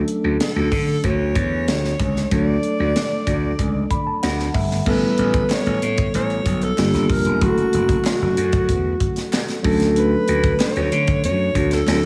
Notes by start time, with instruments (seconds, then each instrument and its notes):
Already playing: tine electric piano F#3 A3 C#4 D4 A4
0.08 closed hi-hat
0.24 slap bass D2
0.40 alto saxophone A4, snare, closed hi-hat
0.56 slap bass D2
0.72 slap bass D3, kick, open hi-hat
1.04 slap bass D2, alto saxophone C#5, kick, closed hi-hat
1.35 slap bass E2, kick, closed hi-hat
1.68 slap bass D2, snare, closed hi-hat
1.84 snare
2.00 slap bass C#2, kick, closed hi-hat
2.16 snare
2.30 slap bass D2, tine electric piano F#3 A3 D4 A4, alto saxophone D5, kick, closed hi-hat
2.63 closed hi-hat
2.80 slap bass D2
2.96 snare, closed hi-hat
3.27 slap bass D2, kick, closed hi-hat
3.59 slap bass C#2, kick, closed hi-hat
3.91 tine electric piano B5, kick, closed hi-hat
4.07 tine electric piano A5
4.23 slap bass D2, tine electric piano F#5, snare, closed hi-hat
4.39 snare
4.54 slap bass G1, tine electric piano E5, kick, open hi-hat
4.71 snare
4.86 slap bass A1, tine electric piano G3 B3 C#4 E4 A4, alto saxophone B4, kick, crash
5.18 slap bass A1, closed hi-hat
5.34 kick, closed hi-hat
5.50 alto saxophone C#5, snare, clap, closed hi-hat
5.66 slap bass A1, closed hi-hat
5.82 slap bass A2, closed hi-hat
5.98 kick, closed hi-hat
6.14 slap bass A1, alto saxophone C#5, closed hi-hat
6.30 closed hi-hat
6.46 slap bass B1, kick, closed hi-hat
6.61 alto saxophone A4, closed hi-hat
6.77 slap bass G1, tine electric piano G3 A#3 D4 F4 G4, snare, clap, closed hi-hat
6.94 slap bass G1, snare, closed hi-hat
7.10 slap bass F1, alto saxophone A#4, kick, open hi-hat
7.25 slap bass E1, closed hi-hat
7.40 slap bass F#1, tine electric piano F#3 A3 C#4 E4 G#4, alto saxophone F#4, kick, closed hi-hat
7.49 tine electric piano A4
7.58 closed hi-hat
7.73 slap bass F#1, closed hi-hat
7.89 kick, closed hi-hat
8.04 alto saxophone F#4, snare, clap, closed hi-hat
8.22 slap bass F#1
8.37 slap bass F#2, closed hi-hat
8.53 kick, closed hi-hat
8.69 slap bass E2, kick, closed hi-hat
9.00 kick, closed hi-hat
9.16 snare, closed hi-hat
9.33 snare, clap, closed hi-hat
9.48 snare, closed hi-hat
9.63 slap bass D2, tine electric piano F#3 A3 C#4 D4 A4, kick, open hi-hat
9.80 snare, closed hi-hat
9.96 alto saxophone B4, closed hi-hat
10.28 slap bass D2, closed hi-hat
10.44 kick, closed hi-hat
10.59 alto saxophone C#5, snare, clap, closed hi-hat
10.76 slap bass D2, closed hi-hat
10.92 slap bass D3, closed hi-hat
11.07 kick, closed hi-hat
11.24 slap bass F#2, alto saxophone C#5, closed hi-hat
11.55 slap bass D2, kick, closed hi-hat
11.71 alto saxophone A4, snare, closed hi-hat
11.87 slap bass D2, tine electric piano F#3 C4 D4 E4 A4, snare, clap, closed hi-hat